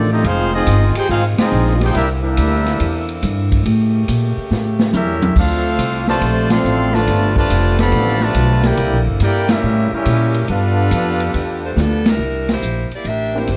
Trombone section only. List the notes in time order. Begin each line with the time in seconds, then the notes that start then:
0.11 A3 C4 D#4
0.25 G#3 C4 F4
0.54 G#3 C4 D#4
0.96 G4
1.09 G#3 C4 F4
1.37 G#3 C4 D#4
1.80 G4
1.93 G3 A#3 E4
2.22 G3 A#3 E4
4.92 G3 C#4 E4
5.36 A3 C4 F4
6.07 C3 F3 A3
6.50 F3 A3 C4
6.93 D3 F3 A3
7.35 D3 F3 A3
7.78 D3 F3 B3
8.20 D3 F3 A3
8.64 A#3 E4 G4
9.20 A#3 E4 G4
9.49 G3 C#4 E4
9.91 G3 C#4 E4
10.48 B3 D4 F4